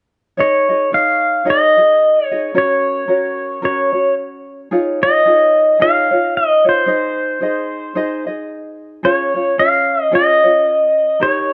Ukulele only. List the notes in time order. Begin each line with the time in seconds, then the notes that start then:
0.37 D#4 G#4 C#5 D#5
0.69 D#4 G#4 D#5
0.92 D#4 G#4 C#5 D#5
1.45 D#4 G#4 C#5 D#5
1.77 D#4 G#4 D#5
2.31 D#4 G#4 D#5
2.55 C#4 F#4 A#4 C#5
3.08 C#4 F#4 A#4 C#5
3.62 C#4 F#4 A#4 C#5
3.93 C#4 F#4 C#5
4.71 D#4 F4 G#4 C#5
5.02 D#4 F4 C#5
5.26 D#4 F4 G#4 C#5
5.80 D#4 F4 G#4 C#5
6.11 D#4 F4 C#5
6.65 D#4 F4 C#5
6.86 D#4 G#4 C5 D#5
7.41 D#4 G#4 C5 D#5
7.95 D#4 G#4 C5 D#5
8.27 D#4 G#4 D#5
9.03 C#4 F4 G#4 C#5
9.35 C#4 F4 C#5
9.58 C#4 F4 G#4 C#5
10.12 C#4 F4 G#4 C#5
10.43 C#4 F4 C#5
11.20 D#4 G4 A#4 C#5